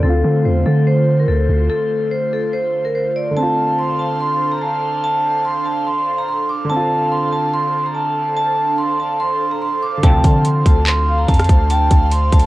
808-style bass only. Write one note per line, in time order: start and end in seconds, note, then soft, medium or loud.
0.03 0.23 D2 loud
0.24 0.46 D3 loud
0.45 0.65 E2 loud
0.66 1.26 D3 loud
1.28 1.48 D2 loud
1.49 1.69 D2 loud
10.03 10.23 D2 loud
10.24 10.64 D3 loud
10.66 11.26 D2 loud
11.28 11.48 F2 loud
11.49 11.89 D2 loud
11.91 12.31 D2 loud
12.33 12.46 D2 loud